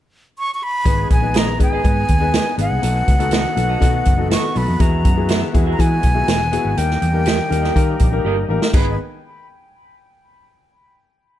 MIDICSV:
0, 0, Header, 1, 7, 480
1, 0, Start_track
1, 0, Key_signature, 5, "minor"
1, 0, Tempo, 491400
1, 842, Time_signature, 4, 2, 24, 8
1, 11130, End_track
2, 0, Start_track
2, 0, Title_t, "Flute"
2, 0, Program_c, 0, 73
2, 380, Note_on_c, 0, 85, 93
2, 525, Note_off_c, 0, 85, 0
2, 531, Note_on_c, 0, 85, 72
2, 618, Note_on_c, 0, 83, 105
2, 632, Note_off_c, 0, 85, 0
2, 1091, Note_off_c, 0, 83, 0
2, 1101, Note_on_c, 0, 80, 81
2, 1346, Note_on_c, 0, 82, 84
2, 1361, Note_off_c, 0, 80, 0
2, 1575, Note_off_c, 0, 82, 0
2, 1590, Note_on_c, 0, 80, 100
2, 2501, Note_off_c, 0, 80, 0
2, 2548, Note_on_c, 0, 78, 99
2, 4183, Note_off_c, 0, 78, 0
2, 4230, Note_on_c, 0, 85, 89
2, 4468, Note_on_c, 0, 83, 81
2, 4482, Note_off_c, 0, 85, 0
2, 4698, Note_on_c, 0, 82, 72
2, 4712, Note_off_c, 0, 83, 0
2, 5390, Note_off_c, 0, 82, 0
2, 5596, Note_on_c, 0, 82, 68
2, 5667, Note_on_c, 0, 80, 102
2, 5682, Note_off_c, 0, 82, 0
2, 6622, Note_on_c, 0, 79, 91
2, 6637, Note_off_c, 0, 80, 0
2, 8056, Note_off_c, 0, 79, 0
2, 8551, Note_on_c, 0, 83, 71
2, 8764, Note_off_c, 0, 83, 0
2, 11130, End_track
3, 0, Start_track
3, 0, Title_t, "Clean electric guitar"
3, 0, Program_c, 1, 27
3, 1317, Note_on_c, 1, 68, 76
3, 1325, Note_on_c, 1, 71, 73
3, 1331, Note_on_c, 1, 75, 80
3, 1425, Note_off_c, 1, 68, 0
3, 1429, Note_off_c, 1, 71, 0
3, 1432, Note_off_c, 1, 75, 0
3, 1686, Note_on_c, 1, 75, 56
3, 1694, Note_on_c, 1, 71, 47
3, 1700, Note_on_c, 1, 68, 51
3, 1767, Note_off_c, 1, 75, 0
3, 1771, Note_off_c, 1, 71, 0
3, 1774, Note_off_c, 1, 68, 0
3, 2285, Note_on_c, 1, 68, 83
3, 2290, Note_on_c, 1, 71, 84
3, 2298, Note_on_c, 1, 75, 85
3, 2390, Note_off_c, 1, 68, 0
3, 2392, Note_off_c, 1, 71, 0
3, 2396, Note_off_c, 1, 75, 0
3, 3249, Note_on_c, 1, 66, 81
3, 3255, Note_on_c, 1, 69, 79
3, 3261, Note_on_c, 1, 75, 85
3, 3354, Note_off_c, 1, 66, 0
3, 3357, Note_off_c, 1, 69, 0
3, 3359, Note_off_c, 1, 75, 0
3, 3607, Note_on_c, 1, 75, 58
3, 3614, Note_on_c, 1, 69, 51
3, 3621, Note_on_c, 1, 66, 47
3, 3690, Note_off_c, 1, 75, 0
3, 3694, Note_off_c, 1, 69, 0
3, 3697, Note_off_c, 1, 66, 0
3, 4205, Note_on_c, 1, 66, 81
3, 4213, Note_on_c, 1, 69, 78
3, 4219, Note_on_c, 1, 75, 74
3, 4312, Note_off_c, 1, 66, 0
3, 4317, Note_off_c, 1, 69, 0
3, 4320, Note_off_c, 1, 75, 0
3, 5171, Note_on_c, 1, 66, 73
3, 5181, Note_on_c, 1, 68, 98
3, 5185, Note_on_c, 1, 76, 98
3, 5276, Note_off_c, 1, 66, 0
3, 5281, Note_off_c, 1, 68, 0
3, 5283, Note_off_c, 1, 76, 0
3, 5533, Note_on_c, 1, 76, 61
3, 5540, Note_on_c, 1, 68, 54
3, 5546, Note_on_c, 1, 66, 49
3, 5614, Note_off_c, 1, 76, 0
3, 5618, Note_off_c, 1, 68, 0
3, 5621, Note_off_c, 1, 66, 0
3, 6136, Note_on_c, 1, 66, 77
3, 6144, Note_on_c, 1, 68, 73
3, 6149, Note_on_c, 1, 76, 83
3, 6239, Note_off_c, 1, 66, 0
3, 6243, Note_off_c, 1, 68, 0
3, 6246, Note_off_c, 1, 76, 0
3, 7096, Note_on_c, 1, 67, 82
3, 7103, Note_on_c, 1, 70, 81
3, 7109, Note_on_c, 1, 75, 98
3, 7198, Note_off_c, 1, 67, 0
3, 7202, Note_off_c, 1, 70, 0
3, 7205, Note_off_c, 1, 75, 0
3, 7454, Note_on_c, 1, 75, 60
3, 7461, Note_on_c, 1, 70, 52
3, 7470, Note_on_c, 1, 67, 49
3, 7535, Note_off_c, 1, 75, 0
3, 7538, Note_off_c, 1, 70, 0
3, 7542, Note_off_c, 1, 67, 0
3, 8056, Note_on_c, 1, 67, 78
3, 8066, Note_on_c, 1, 70, 75
3, 8070, Note_on_c, 1, 75, 82
3, 8157, Note_off_c, 1, 67, 0
3, 8163, Note_off_c, 1, 70, 0
3, 8165, Note_off_c, 1, 75, 0
3, 8536, Note_on_c, 1, 68, 71
3, 8544, Note_on_c, 1, 71, 77
3, 8552, Note_on_c, 1, 75, 94
3, 8676, Note_off_c, 1, 68, 0
3, 8681, Note_off_c, 1, 71, 0
3, 8685, Note_off_c, 1, 75, 0
3, 11130, End_track
4, 0, Start_track
4, 0, Title_t, "Grand piano"
4, 0, Program_c, 2, 0
4, 826, Note_on_c, 2, 59, 82
4, 833, Note_on_c, 2, 63, 71
4, 834, Note_on_c, 2, 68, 76
4, 839, Note_on_c, 2, 71, 89
4, 1122, Note_off_c, 2, 59, 0
4, 1125, Note_off_c, 2, 63, 0
4, 1126, Note_off_c, 2, 68, 0
4, 1128, Note_off_c, 2, 71, 0
4, 1184, Note_on_c, 2, 59, 76
4, 1190, Note_on_c, 2, 63, 63
4, 1195, Note_on_c, 2, 68, 72
4, 1202, Note_on_c, 2, 71, 78
4, 1481, Note_off_c, 2, 59, 0
4, 1484, Note_off_c, 2, 63, 0
4, 1486, Note_off_c, 2, 68, 0
4, 1490, Note_off_c, 2, 71, 0
4, 1547, Note_on_c, 2, 59, 69
4, 1553, Note_on_c, 2, 63, 62
4, 1554, Note_on_c, 2, 68, 61
4, 1560, Note_on_c, 2, 71, 69
4, 1747, Note_off_c, 2, 59, 0
4, 1750, Note_off_c, 2, 63, 0
4, 1751, Note_off_c, 2, 68, 0
4, 1753, Note_off_c, 2, 71, 0
4, 1792, Note_on_c, 2, 59, 71
4, 1800, Note_on_c, 2, 63, 64
4, 1801, Note_on_c, 2, 68, 66
4, 1806, Note_on_c, 2, 71, 82
4, 2086, Note_off_c, 2, 59, 0
4, 2090, Note_off_c, 2, 63, 0
4, 2090, Note_off_c, 2, 68, 0
4, 2093, Note_off_c, 2, 71, 0
4, 2150, Note_on_c, 2, 59, 82
4, 2156, Note_on_c, 2, 63, 73
4, 2162, Note_on_c, 2, 68, 77
4, 2164, Note_on_c, 2, 71, 90
4, 2446, Note_off_c, 2, 59, 0
4, 2448, Note_off_c, 2, 63, 0
4, 2451, Note_off_c, 2, 68, 0
4, 2452, Note_off_c, 2, 71, 0
4, 2508, Note_on_c, 2, 59, 69
4, 2516, Note_on_c, 2, 63, 66
4, 2521, Note_on_c, 2, 68, 60
4, 2522, Note_on_c, 2, 71, 79
4, 2709, Note_off_c, 2, 59, 0
4, 2713, Note_off_c, 2, 63, 0
4, 2716, Note_off_c, 2, 68, 0
4, 2716, Note_off_c, 2, 71, 0
4, 2752, Note_on_c, 2, 59, 76
4, 2758, Note_on_c, 2, 63, 65
4, 2766, Note_on_c, 2, 66, 60
4, 2766, Note_on_c, 2, 69, 80
4, 3047, Note_off_c, 2, 59, 0
4, 3050, Note_off_c, 2, 63, 0
4, 3054, Note_off_c, 2, 66, 0
4, 3054, Note_off_c, 2, 69, 0
4, 3112, Note_on_c, 2, 59, 80
4, 3113, Note_on_c, 2, 63, 79
4, 3119, Note_on_c, 2, 66, 76
4, 3123, Note_on_c, 2, 69, 96
4, 3408, Note_off_c, 2, 59, 0
4, 3408, Note_off_c, 2, 63, 0
4, 3411, Note_off_c, 2, 66, 0
4, 3413, Note_off_c, 2, 69, 0
4, 3469, Note_on_c, 2, 59, 83
4, 3473, Note_on_c, 2, 63, 66
4, 3478, Note_on_c, 2, 66, 76
4, 3481, Note_on_c, 2, 69, 85
4, 3671, Note_off_c, 2, 59, 0
4, 3673, Note_off_c, 2, 63, 0
4, 3675, Note_off_c, 2, 66, 0
4, 3677, Note_off_c, 2, 69, 0
4, 3713, Note_on_c, 2, 59, 86
4, 3715, Note_on_c, 2, 63, 88
4, 3719, Note_on_c, 2, 66, 80
4, 3726, Note_on_c, 2, 69, 88
4, 4009, Note_off_c, 2, 59, 0
4, 4010, Note_off_c, 2, 63, 0
4, 4012, Note_off_c, 2, 66, 0
4, 4015, Note_off_c, 2, 69, 0
4, 4074, Note_on_c, 2, 59, 65
4, 4079, Note_on_c, 2, 63, 67
4, 4086, Note_on_c, 2, 66, 70
4, 4090, Note_on_c, 2, 69, 81
4, 4369, Note_off_c, 2, 59, 0
4, 4372, Note_off_c, 2, 63, 0
4, 4376, Note_off_c, 2, 66, 0
4, 4378, Note_off_c, 2, 69, 0
4, 4440, Note_on_c, 2, 59, 77
4, 4446, Note_on_c, 2, 63, 62
4, 4450, Note_on_c, 2, 66, 67
4, 4455, Note_on_c, 2, 69, 76
4, 4637, Note_off_c, 2, 59, 0
4, 4640, Note_off_c, 2, 63, 0
4, 4642, Note_off_c, 2, 66, 0
4, 4645, Note_off_c, 2, 69, 0
4, 4678, Note_on_c, 2, 59, 72
4, 4682, Note_on_c, 2, 64, 71
4, 4687, Note_on_c, 2, 66, 71
4, 4691, Note_on_c, 2, 68, 82
4, 4972, Note_off_c, 2, 59, 0
4, 4974, Note_off_c, 2, 64, 0
4, 4976, Note_off_c, 2, 66, 0
4, 4979, Note_off_c, 2, 68, 0
4, 5039, Note_on_c, 2, 59, 74
4, 5044, Note_on_c, 2, 64, 70
4, 5050, Note_on_c, 2, 66, 65
4, 5054, Note_on_c, 2, 68, 84
4, 5332, Note_off_c, 2, 59, 0
4, 5335, Note_off_c, 2, 64, 0
4, 5338, Note_off_c, 2, 66, 0
4, 5340, Note_off_c, 2, 68, 0
4, 5398, Note_on_c, 2, 59, 77
4, 5403, Note_on_c, 2, 64, 72
4, 5409, Note_on_c, 2, 66, 68
4, 5415, Note_on_c, 2, 68, 92
4, 5597, Note_off_c, 2, 59, 0
4, 5599, Note_off_c, 2, 64, 0
4, 5602, Note_off_c, 2, 66, 0
4, 5605, Note_off_c, 2, 68, 0
4, 5641, Note_on_c, 2, 59, 70
4, 5642, Note_on_c, 2, 64, 67
4, 5646, Note_on_c, 2, 66, 69
4, 5651, Note_on_c, 2, 68, 78
4, 5934, Note_off_c, 2, 59, 0
4, 5934, Note_off_c, 2, 64, 0
4, 5936, Note_off_c, 2, 66, 0
4, 5939, Note_off_c, 2, 68, 0
4, 6000, Note_on_c, 2, 59, 74
4, 6002, Note_on_c, 2, 64, 64
4, 6009, Note_on_c, 2, 66, 61
4, 6012, Note_on_c, 2, 68, 78
4, 6293, Note_off_c, 2, 59, 0
4, 6294, Note_off_c, 2, 64, 0
4, 6298, Note_off_c, 2, 66, 0
4, 6299, Note_off_c, 2, 68, 0
4, 6361, Note_on_c, 2, 59, 87
4, 6366, Note_on_c, 2, 64, 76
4, 6371, Note_on_c, 2, 66, 74
4, 6376, Note_on_c, 2, 68, 100
4, 6558, Note_off_c, 2, 59, 0
4, 6561, Note_off_c, 2, 64, 0
4, 6563, Note_off_c, 2, 66, 0
4, 6565, Note_off_c, 2, 68, 0
4, 6604, Note_on_c, 2, 58, 69
4, 6609, Note_on_c, 2, 63, 61
4, 6614, Note_on_c, 2, 67, 63
4, 6616, Note_on_c, 2, 70, 73
4, 6895, Note_off_c, 2, 58, 0
4, 6897, Note_off_c, 2, 63, 0
4, 6900, Note_off_c, 2, 67, 0
4, 6901, Note_off_c, 2, 70, 0
4, 6957, Note_on_c, 2, 58, 66
4, 6964, Note_on_c, 2, 63, 65
4, 6967, Note_on_c, 2, 67, 66
4, 6975, Note_on_c, 2, 70, 78
4, 7251, Note_off_c, 2, 58, 0
4, 7255, Note_off_c, 2, 63, 0
4, 7256, Note_off_c, 2, 67, 0
4, 7260, Note_off_c, 2, 70, 0
4, 7316, Note_on_c, 2, 58, 74
4, 7323, Note_on_c, 2, 63, 79
4, 7329, Note_on_c, 2, 67, 73
4, 7330, Note_on_c, 2, 70, 89
4, 7515, Note_off_c, 2, 58, 0
4, 7518, Note_off_c, 2, 63, 0
4, 7521, Note_off_c, 2, 67, 0
4, 7522, Note_off_c, 2, 70, 0
4, 7563, Note_on_c, 2, 58, 78
4, 7565, Note_on_c, 2, 63, 77
4, 7572, Note_on_c, 2, 67, 78
4, 7578, Note_on_c, 2, 70, 100
4, 7854, Note_off_c, 2, 58, 0
4, 7854, Note_off_c, 2, 63, 0
4, 7858, Note_off_c, 2, 67, 0
4, 7861, Note_off_c, 2, 70, 0
4, 7925, Note_on_c, 2, 58, 83
4, 7930, Note_on_c, 2, 63, 74
4, 7934, Note_on_c, 2, 67, 74
4, 7941, Note_on_c, 2, 70, 88
4, 8214, Note_off_c, 2, 58, 0
4, 8217, Note_off_c, 2, 63, 0
4, 8219, Note_off_c, 2, 67, 0
4, 8222, Note_off_c, 2, 70, 0
4, 8286, Note_on_c, 2, 58, 79
4, 8294, Note_on_c, 2, 63, 74
4, 8297, Note_on_c, 2, 67, 73
4, 8304, Note_on_c, 2, 70, 96
4, 8479, Note_off_c, 2, 58, 0
4, 8483, Note_off_c, 2, 63, 0
4, 8484, Note_off_c, 2, 67, 0
4, 8488, Note_off_c, 2, 70, 0
4, 8532, Note_on_c, 2, 71, 88
4, 8534, Note_on_c, 2, 68, 75
4, 8536, Note_on_c, 2, 59, 72
4, 8536, Note_on_c, 2, 63, 76
4, 8754, Note_off_c, 2, 71, 0
4, 8755, Note_off_c, 2, 68, 0
4, 8756, Note_off_c, 2, 59, 0
4, 8756, Note_off_c, 2, 63, 0
4, 11130, End_track
5, 0, Start_track
5, 0, Title_t, "Tonewheel organ"
5, 0, Program_c, 3, 16
5, 835, Note_on_c, 3, 68, 62
5, 836, Note_on_c, 3, 59, 55
5, 836, Note_on_c, 3, 63, 52
5, 838, Note_on_c, 3, 56, 57
5, 2745, Note_off_c, 3, 59, 0
5, 2745, Note_off_c, 3, 68, 0
5, 2747, Note_off_c, 3, 56, 0
5, 2761, Note_on_c, 3, 59, 53
5, 2763, Note_on_c, 3, 66, 68
5, 2765, Note_on_c, 3, 57, 59
5, 4650, Note_off_c, 3, 63, 0
5, 4672, Note_off_c, 3, 57, 0
5, 4684, Note_on_c, 3, 56, 65
5, 4685, Note_on_c, 3, 64, 60
5, 6572, Note_off_c, 3, 59, 0
5, 6573, Note_off_c, 3, 66, 0
5, 6590, Note_off_c, 3, 56, 0
5, 6590, Note_off_c, 3, 64, 0
5, 6610, Note_on_c, 3, 55, 67
5, 6610, Note_on_c, 3, 63, 54
5, 6614, Note_on_c, 3, 58, 61
5, 6618, Note_on_c, 3, 67, 70
5, 8509, Note_off_c, 3, 55, 0
5, 8509, Note_off_c, 3, 63, 0
5, 8511, Note_off_c, 3, 58, 0
5, 8513, Note_off_c, 3, 67, 0
5, 8530, Note_on_c, 3, 56, 60
5, 8534, Note_on_c, 3, 59, 54
5, 8535, Note_on_c, 3, 68, 67
5, 8537, Note_on_c, 3, 63, 58
5, 8753, Note_off_c, 3, 56, 0
5, 8754, Note_off_c, 3, 59, 0
5, 8755, Note_off_c, 3, 68, 0
5, 8756, Note_off_c, 3, 63, 0
5, 11130, End_track
6, 0, Start_track
6, 0, Title_t, "Fingered electric bass"
6, 0, Program_c, 4, 33
6, 837, Note_on_c, 4, 32, 79
6, 1021, Note_off_c, 4, 32, 0
6, 1080, Note_on_c, 4, 34, 74
6, 1565, Note_off_c, 4, 34, 0
6, 1565, Note_on_c, 4, 32, 82
6, 1747, Note_off_c, 4, 32, 0
6, 1801, Note_on_c, 4, 44, 100
6, 1985, Note_off_c, 4, 44, 0
6, 2046, Note_on_c, 4, 39, 83
6, 2320, Note_off_c, 4, 39, 0
6, 2519, Note_on_c, 4, 32, 87
6, 2613, Note_off_c, 4, 32, 0
6, 2642, Note_on_c, 4, 36, 81
6, 2736, Note_off_c, 4, 36, 0
6, 2764, Note_on_c, 4, 35, 97
6, 2948, Note_off_c, 4, 35, 0
6, 3005, Note_on_c, 4, 37, 74
6, 3371, Note_off_c, 4, 37, 0
6, 3484, Note_on_c, 4, 35, 81
6, 3669, Note_off_c, 4, 35, 0
6, 3728, Note_on_c, 4, 47, 114
6, 3911, Note_off_c, 4, 47, 0
6, 3971, Note_on_c, 4, 30, 86
6, 4245, Note_off_c, 4, 30, 0
6, 4454, Note_on_c, 4, 35, 83
6, 4544, Note_off_c, 4, 35, 0
6, 4575, Note_on_c, 4, 41, 70
6, 4665, Note_off_c, 4, 41, 0
6, 4690, Note_on_c, 4, 40, 103
6, 4934, Note_off_c, 4, 40, 0
6, 4934, Note_on_c, 4, 42, 81
6, 5298, Note_off_c, 4, 42, 0
6, 5415, Note_on_c, 4, 40, 79
6, 5596, Note_off_c, 4, 40, 0
6, 5656, Note_on_c, 4, 52, 103
6, 5837, Note_off_c, 4, 52, 0
6, 5896, Note_on_c, 4, 35, 72
6, 6077, Note_off_c, 4, 35, 0
6, 6137, Note_on_c, 4, 28, 78
6, 6409, Note_off_c, 4, 28, 0
6, 6495, Note_on_c, 4, 32, 76
6, 6585, Note_off_c, 4, 32, 0
6, 6616, Note_on_c, 4, 39, 95
6, 6797, Note_off_c, 4, 39, 0
6, 6856, Note_on_c, 4, 40, 84
6, 7218, Note_off_c, 4, 40, 0
6, 7334, Note_on_c, 4, 39, 86
6, 7515, Note_off_c, 4, 39, 0
6, 7580, Note_on_c, 4, 51, 104
6, 7759, Note_off_c, 4, 51, 0
6, 7823, Note_on_c, 4, 34, 90
6, 8000, Note_off_c, 4, 34, 0
6, 8055, Note_on_c, 4, 31, 82
6, 8235, Note_off_c, 4, 31, 0
6, 8291, Note_on_c, 4, 33, 73
6, 8381, Note_off_c, 4, 33, 0
6, 8531, Note_on_c, 4, 32, 86
6, 8753, Note_off_c, 4, 32, 0
6, 11130, End_track
7, 0, Start_track
7, 0, Title_t, "Drums"
7, 836, Note_on_c, 9, 36, 94
7, 838, Note_on_c, 9, 42, 82
7, 934, Note_off_c, 9, 36, 0
7, 935, Note_off_c, 9, 42, 0
7, 1079, Note_on_c, 9, 42, 57
7, 1081, Note_on_c, 9, 36, 89
7, 1176, Note_off_c, 9, 42, 0
7, 1178, Note_off_c, 9, 36, 0
7, 1309, Note_on_c, 9, 42, 79
7, 1327, Note_on_c, 9, 38, 104
7, 1406, Note_off_c, 9, 42, 0
7, 1425, Note_off_c, 9, 38, 0
7, 1563, Note_on_c, 9, 36, 77
7, 1566, Note_on_c, 9, 42, 57
7, 1661, Note_off_c, 9, 36, 0
7, 1663, Note_off_c, 9, 42, 0
7, 1802, Note_on_c, 9, 36, 87
7, 1804, Note_on_c, 9, 42, 60
7, 1900, Note_off_c, 9, 36, 0
7, 1902, Note_off_c, 9, 42, 0
7, 2036, Note_on_c, 9, 42, 60
7, 2045, Note_on_c, 9, 36, 79
7, 2134, Note_off_c, 9, 42, 0
7, 2143, Note_off_c, 9, 36, 0
7, 2282, Note_on_c, 9, 42, 92
7, 2284, Note_on_c, 9, 38, 98
7, 2380, Note_off_c, 9, 42, 0
7, 2382, Note_off_c, 9, 38, 0
7, 2524, Note_on_c, 9, 42, 69
7, 2622, Note_off_c, 9, 42, 0
7, 2763, Note_on_c, 9, 42, 83
7, 2861, Note_off_c, 9, 42, 0
7, 3006, Note_on_c, 9, 42, 60
7, 3008, Note_on_c, 9, 36, 82
7, 3104, Note_off_c, 9, 42, 0
7, 3105, Note_off_c, 9, 36, 0
7, 3126, Note_on_c, 9, 42, 48
7, 3223, Note_off_c, 9, 42, 0
7, 3233, Note_on_c, 9, 42, 76
7, 3251, Note_on_c, 9, 38, 110
7, 3330, Note_off_c, 9, 42, 0
7, 3349, Note_off_c, 9, 38, 0
7, 3490, Note_on_c, 9, 42, 70
7, 3587, Note_off_c, 9, 42, 0
7, 3728, Note_on_c, 9, 36, 78
7, 3730, Note_on_c, 9, 42, 66
7, 3826, Note_off_c, 9, 36, 0
7, 3828, Note_off_c, 9, 42, 0
7, 3959, Note_on_c, 9, 42, 59
7, 3971, Note_on_c, 9, 36, 77
7, 4057, Note_off_c, 9, 42, 0
7, 4069, Note_off_c, 9, 36, 0
7, 4212, Note_on_c, 9, 42, 88
7, 4215, Note_on_c, 9, 38, 102
7, 4310, Note_off_c, 9, 42, 0
7, 4312, Note_off_c, 9, 38, 0
7, 4451, Note_on_c, 9, 46, 52
7, 4548, Note_off_c, 9, 46, 0
7, 4688, Note_on_c, 9, 42, 86
7, 4689, Note_on_c, 9, 36, 97
7, 4786, Note_off_c, 9, 42, 0
7, 4787, Note_off_c, 9, 36, 0
7, 4931, Note_on_c, 9, 42, 63
7, 4934, Note_on_c, 9, 36, 84
7, 5029, Note_off_c, 9, 42, 0
7, 5031, Note_off_c, 9, 36, 0
7, 5163, Note_on_c, 9, 42, 71
7, 5182, Note_on_c, 9, 38, 103
7, 5261, Note_off_c, 9, 42, 0
7, 5280, Note_off_c, 9, 38, 0
7, 5417, Note_on_c, 9, 36, 84
7, 5417, Note_on_c, 9, 42, 65
7, 5514, Note_off_c, 9, 36, 0
7, 5515, Note_off_c, 9, 42, 0
7, 5656, Note_on_c, 9, 36, 71
7, 5661, Note_on_c, 9, 42, 64
7, 5753, Note_off_c, 9, 36, 0
7, 5759, Note_off_c, 9, 42, 0
7, 5889, Note_on_c, 9, 42, 60
7, 5897, Note_on_c, 9, 36, 76
7, 5987, Note_off_c, 9, 42, 0
7, 5995, Note_off_c, 9, 36, 0
7, 6135, Note_on_c, 9, 42, 85
7, 6137, Note_on_c, 9, 38, 99
7, 6232, Note_off_c, 9, 42, 0
7, 6234, Note_off_c, 9, 38, 0
7, 6376, Note_on_c, 9, 42, 70
7, 6473, Note_off_c, 9, 42, 0
7, 6618, Note_on_c, 9, 42, 82
7, 6715, Note_off_c, 9, 42, 0
7, 6746, Note_on_c, 9, 38, 36
7, 6844, Note_off_c, 9, 38, 0
7, 6857, Note_on_c, 9, 42, 59
7, 6955, Note_off_c, 9, 42, 0
7, 7088, Note_on_c, 9, 42, 70
7, 7106, Note_on_c, 9, 38, 120
7, 7185, Note_off_c, 9, 42, 0
7, 7204, Note_off_c, 9, 38, 0
7, 7347, Note_on_c, 9, 42, 68
7, 7445, Note_off_c, 9, 42, 0
7, 7464, Note_on_c, 9, 38, 31
7, 7562, Note_off_c, 9, 38, 0
7, 7579, Note_on_c, 9, 36, 79
7, 7583, Note_on_c, 9, 42, 66
7, 7677, Note_off_c, 9, 36, 0
7, 7680, Note_off_c, 9, 42, 0
7, 7809, Note_on_c, 9, 42, 64
7, 7819, Note_on_c, 9, 36, 83
7, 7907, Note_off_c, 9, 42, 0
7, 7917, Note_off_c, 9, 36, 0
7, 8420, Note_on_c, 9, 38, 79
7, 8518, Note_off_c, 9, 38, 0
7, 8534, Note_on_c, 9, 36, 93
7, 8535, Note_on_c, 9, 49, 78
7, 8631, Note_off_c, 9, 36, 0
7, 8633, Note_off_c, 9, 49, 0
7, 11130, End_track
0, 0, End_of_file